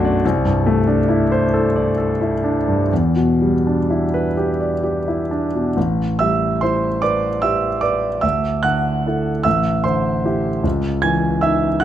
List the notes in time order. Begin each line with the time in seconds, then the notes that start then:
Already playing: B1 F#2 A3 D4 F#4
0.05 D5
0.25 C2
0.45 G2
0.66 A3
0.87 D4
1.09 E4
1.32 C5
1.54 A4
1.76 D5
1.98 A4
2.21 E4
2.44 D4
2.68 G2
2.92 E2
3.16 B2
3.42 G3
3.67 D4
3.90 E4
4.14 B4
4.37 G4
4.60 D5
4.84 G4
5.08 E4
5.31 D4
5.54 B2
5.77 A1
6.19 G3 E5 E6
6.61 E4 C5 C6
7.02 B4 D5 D6
7.42 G4 E5 E6
7.81 B4 D5 D6
8.21 D2 E5 E6
8.63 D3 F#5 F#6
9.07 E4 A4
9.43 A1 E5 E6
9.84 D3 C5 C6
10.25 E4 G4
10.64 C#2
11.02 E3 G#5 G#6
11.41 D#4 E5 E6
11.80 F#5 F#6